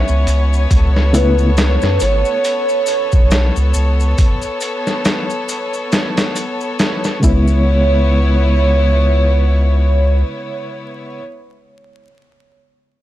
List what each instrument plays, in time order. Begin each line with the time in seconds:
Already playing: violin section B3 C#4 C#5, soft synth lead E5
0.08 analog synth bass C#2, maracas
0.27 analog synth bass C#2, closed hi-hat, maracas
0.53 maracas
0.71 analog synth bass C#2, violin section A4, kick, closed hi-hat, maracas
0.96 snare
1.13 reed electric piano C#3 A3 B3 E4, soft synth lead B4, closed hi-hat, maracas
1.39 maracas
1.57 snare, closed hi-hat, maracas
1.82 analog synth bass F#2, snare, maracas
2.00 analog synth bass G#1, soft synth lead C#5, closed hi-hat, maracas
2.25 maracas
2.44 closed hi-hat, maracas
2.69 maracas
2.86 closed hi-hat, maracas
3.12 analog synth bass B1, kick, maracas
3.31 snare, closed hi-hat, maracas
3.56 analog synth bass C#2, maracas
3.74 analog synth bass C#2, maracas
4.00 maracas
4.18 kick, closed hi-hat, maracas
4.42 maracas
4.61 closed hi-hat, maracas
4.87 snare, maracas
5.05 snare, closed hi-hat, maracas
5.30 maracas
5.49 closed hi-hat, maracas
5.73 maracas
5.92 snare, closed hi-hat, maracas
6.17 snare, closed hi-hat, maracas
6.36 closed hi-hat, maracas
6.61 maracas
6.79 snare, closed hi-hat, maracas
7.04 snare, maracas
7.20 analog synth bass C#2, reed electric piano C#3 G#3 B3, violin section B3 E4 C#5, kick, maracas
7.24 reed electric piano E4, soft synth lead C#5
7.47 maracas